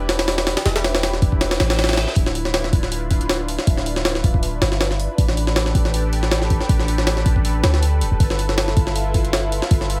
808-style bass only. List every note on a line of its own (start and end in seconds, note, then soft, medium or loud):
0.00 0.55 E1 loud
0.66 1.21 E1 loud
1.22 1.58 E1 loud
1.60 2.06 A1 medium
2.16 2.72 D1 loud
2.73 3.57 D1 medium
3.67 4.22 D1 loud
4.24 4.60 D1 loud
4.62 5.08 G1 loud
5.18 5.74 A1 loud
5.75 6.59 A1 loud
6.69 7.24 A1 loud
7.26 7.62 A1 loud
7.63 8.03 D2 medium
8.01 8.10 E1 medium
8.12 8.19 E1 medium
8.20 8.75 G1 loud
8.77 9.61 G1 loud
9.71 10.00 G1 loud